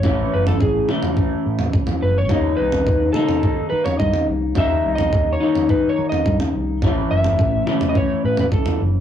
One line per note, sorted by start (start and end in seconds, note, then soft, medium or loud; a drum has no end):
0.00 0.87 A2 medium
0.00 0.35 C#5 medium
0.00 floor tom medium
0.04 0.26 A1 medium
0.04 0.88 E3 medium
0.04 0.88 A3 medium
0.04 0.88 C#4 medium
0.04 0.87 E4 medium
0.04 kick loud
0.34 0.55 F#1 medium
0.34 0.47 B4 medium
0.47 0.61 A4 medium
0.47 floor tom medium
0.61 0.82 A1 medium
0.61 0.88 G#4 medium
0.61 kick loud
0.88 2.30 A2 medium
0.88 2.29 E3 medium
0.88 2.29 A3 medium
0.88 2.29 C#4 medium
0.88 2.28 E4 medium
0.88 mid tom medium
1.03 floor tom medium
1.17 kick loud
1.46 1.67 A2 medium
1.59 floor tom medium
1.73 1.85 C#2 medium
1.73 kick loud
1.87 floor tom medium
2.02 2.30 F#1 medium
2.02 2.17 B4 medium
2.18 2.61 C#5 medium
2.29 2.52 D#2 medium
2.29 3.18 D#3 medium
2.29 3.17 G3 medium
2.29 3.16 A#3 loud
2.29 3.15 D#4 medium
2.29 kick loud
2.29 floor tom medium
2.57 2.81 C2 medium
2.57 3.12 B4 medium
2.72 floor tom medium
2.87 3.08 D#2 medium
2.87 kick loud
3.13 4.56 A#3 medium
3.13 4.55 D#4 medium
3.13 3.69 A4 medium
3.13 mid tom medium
3.17 4.54 D#3 medium
3.17 4.55 G3 medium
3.29 floor tom medium
3.43 kick loud
3.70 3.93 D#3 medium
3.70 3.84 B4 medium
3.84 3.99 C#5 medium
3.84 floor tom medium
3.99 4.11 G2 medium
3.99 4.26 D#5 medium
3.99 kick loud
4.13 floor tom medium
4.28 4.56 C2 medium
4.55 4.78 D#2 medium
4.55 5.39 D#3 medium
4.55 5.40 G3 medium
4.55 5.40 A#3 medium
4.55 5.39 D#4 medium
4.55 4.95 E5 loud
4.55 kick loud
4.55 floor tom medium
4.85 5.06 C2 medium
4.95 5.34 D#5 medium
4.95 floor tom medium
5.13 5.34 D#2 medium
5.13 kick loud
5.33 5.70 C#5 medium
5.40 6.82 D#3 medium
5.40 6.82 G3 medium
5.40 6.81 A#3 medium
5.40 6.81 D#4 medium
5.55 floor tom medium
5.69 5.89 B4 medium
5.69 kick loud
5.89 6.08 C#5 medium
5.99 6.20 D#3 medium
6.09 6.37 D#5 medium
6.09 floor tom medium
6.26 6.37 G2 medium
6.26 kick loud
6.40 floor tom medium
6.56 6.83 C2 medium
6.82 7.04 A1 medium
6.82 7.70 A2 medium
6.82 7.69 E3 medium
6.82 7.68 A3 medium
6.82 7.68 C#4 medium
6.82 7.66 E4 medium
6.82 kick loud
6.82 floor tom medium
7.11 7.32 F#1 medium
7.11 7.89 E5 loud
7.24 floor tom medium
7.39 7.61 A1 medium
7.39 kick loud
7.67 9.00 A2 medium
7.67 9.00 E3 medium
7.67 9.00 A3 medium
7.67 9.00 C#4 medium
7.67 9.00 E4 medium
7.67 mid tom medium
7.81 floor tom medium
7.89 7.96 D#5 medium
7.95 8.25 C#5 medium
7.95 kick loud
8.24 8.45 A2 medium
8.24 8.39 B4 medium
8.37 8.46 B4 medium
8.37 floor tom medium
8.52 8.63 C#2 medium
8.52 8.81 A4 medium
8.52 kick loud
8.66 floor tom medium
8.81 9.00 F#1 medium